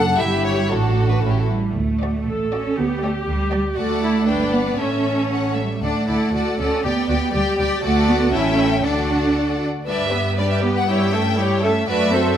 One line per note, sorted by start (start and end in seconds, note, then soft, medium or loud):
0.00 0.15 F#1 soft
0.00 0.15 F#2 soft
0.00 0.15 D4 soft
0.00 0.16 A4 soft
0.00 0.18 F#5 medium
0.18 0.71 G1 soft
0.18 0.71 G2 soft
0.18 0.71 E4 soft
0.18 0.71 G4 soft
0.18 0.70 G4 soft
0.18 0.45 E5 medium
0.45 0.70 C#5 medium
0.70 1.22 A1 soft
0.70 1.22 A2 soft
0.70 1.24 D4 soft
0.70 1.49 F#4 soft
0.70 1.24 F#4 soft
0.70 1.12 A4 soft
1.11 1.21 B4 soft
1.21 1.54 A1 soft
1.21 1.49 A2 soft
1.21 1.56 E4 soft
1.21 1.31 A4 soft
1.25 1.33 C#4 soft
1.30 1.40 G4 soft
1.40 1.50 A4 soft
1.50 1.74 G3 soft
1.75 2.16 D2 soft
1.75 2.52 A3 soft
2.02 2.21 F#4 soft
2.02 2.20 D5 soft
2.02 2.21 D5 soft
2.27 2.67 A1 soft
2.27 2.74 A4 soft
2.53 2.77 C#4 soft
2.53 2.72 F#4 soft
2.53 2.71 D5 soft
2.53 2.72 D5 soft
2.78 3.17 D2 soft
2.78 3.03 B3 soft
2.78 3.77 G4 soft
3.02 3.10 A3 medium
3.02 3.22 G4 soft
3.02 3.22 D5 soft
3.02 3.21 G5 soft
3.27 3.67 D2 medium
3.27 3.52 G3 soft
3.53 3.61 G3 medium
3.53 3.71 G4 soft
3.53 3.71 D5 soft
3.53 3.71 G5 soft
3.77 4.24 D2 soft
3.77 4.52 A3 medium
3.77 4.02 F#4 medium
3.77 4.24 A4 soft
3.77 4.24 D5 soft
3.77 4.24 F#5 soft
4.02 4.27 E4 soft
4.27 4.79 G1 soft
4.27 4.78 D4 soft
4.27 4.79 B4 soft
4.27 4.78 D5 soft
4.27 4.53 G5 soft
4.52 4.79 B3 soft
4.52 4.79 F#5 soft
4.79 5.61 A1 soft
4.79 5.55 C#4 soft
4.79 5.57 C#4 soft
4.79 5.61 A4 soft
4.79 5.63 C#5 soft
4.79 5.25 E5 soft
5.31 5.55 F#5 soft
5.57 5.83 G3 soft
5.57 5.83 E5 soft
5.82 5.91 D2 soft
5.82 6.59 A3 soft
5.82 6.06 D4 soft
5.82 6.08 A4 soft
5.82 6.08 D5 soft
5.82 6.08 F#5 soft
6.08 6.16 D2 soft
6.08 6.33 E4 soft
6.08 6.34 A4 soft
6.08 6.34 D5 soft
6.08 6.34 F#5 soft
6.34 6.42 D2 soft
6.34 6.59 F#4 soft
6.34 6.59 A4 soft
6.34 6.59 D5 soft
6.34 6.59 F#5 soft
6.59 6.67 D2 soft
6.59 6.84 C#4 medium
6.59 6.84 A4 soft
6.59 6.85 A4 soft
6.59 6.85 D5 soft
6.59 6.84 F#5 soft
6.84 6.93 D2 soft
6.84 7.34 B3 medium
6.84 6.92 G4 soft
6.84 7.09 G4 soft
6.84 7.09 D5 soft
6.84 7.09 G5 soft
7.09 7.18 D2 soft
7.09 7.17 F#4 soft
7.09 7.33 G4 soft
7.09 7.33 D5 soft
7.09 7.33 G5 soft
7.34 7.42 D2 soft
7.34 7.57 G3 medium
7.34 7.83 G4 medium
7.34 7.59 G4 soft
7.34 7.58 D5 soft
7.34 7.58 G5 soft
7.58 7.67 D2 medium
7.58 7.66 G3 medium
7.58 7.84 G4 soft
7.58 7.84 D5 soft
7.58 7.83 G5 soft
7.83 8.30 D2 medium
7.83 8.08 A3 medium
7.83 8.32 F#4 medium
7.83 8.30 A4 medium
7.83 8.31 D5 soft
7.83 8.30 F#5 medium
8.08 8.33 B3 medium
8.33 8.84 A1 medium
8.33 8.83 C#4 medium
8.33 8.57 E4 medium
8.33 8.84 A4 soft
8.33 8.85 E5 soft
8.33 8.84 G5 soft
8.58 8.66 E4 soft
8.84 9.67 D2 soft
8.84 9.62 D4 medium
8.84 9.60 F#4 soft
8.84 9.66 A4 soft
8.84 9.66 D5 soft
8.84 9.67 F#5 soft
9.87 11.84 G2 soft
9.87 10.11 G3 soft
9.87 10.11 D4 soft
9.87 10.11 B4 soft
9.87 10.11 D5 soft
9.87 10.34 E5 medium
10.12 10.38 B3 soft
10.12 10.38 G4 soft
10.12 10.37 B4 soft
10.38 10.63 G3 soft
10.38 10.63 D4 soft
10.38 10.85 G4 soft
10.38 10.62 B4 soft
10.38 10.63 D5 soft
10.38 10.51 D5 soft
10.50 10.58 E5 soft
10.63 10.88 B3 soft
10.63 10.88 G4 soft
10.63 10.88 B4 soft
10.76 10.88 F#5 medium
10.89 11.12 G3 soft
10.89 11.12 E4 soft
10.89 11.13 E4 soft
10.89 11.12 G4 soft
10.89 11.12 C#5 soft
10.89 11.63 G5 medium
11.13 11.38 A3 soft
11.13 11.38 C#4 soft
11.13 11.21 A4 soft
11.13 11.39 A4 soft
11.13 11.39 E5 soft
11.38 11.63 G3 soft
11.38 11.63 E4 soft
11.38 11.63 G4 soft
11.38 11.63 C#5 soft
11.63 11.87 A3 soft
11.63 11.88 C#4 soft
11.63 11.71 A4 soft
11.63 11.88 A4 soft
11.63 11.88 E5 soft
11.88 12.37 F#2 soft
11.88 12.11 A3 soft
11.88 12.11 D4 soft
11.88 12.11 F#4 soft
11.88 12.12 B4 medium
11.88 12.11 D5 soft
11.88 12.34 E5 medium
12.12 12.37 C4 soft
12.12 12.37 F#4 soft
12.12 12.37 A4 soft
12.12 12.37 A4 medium
12.12 12.37 C5 soft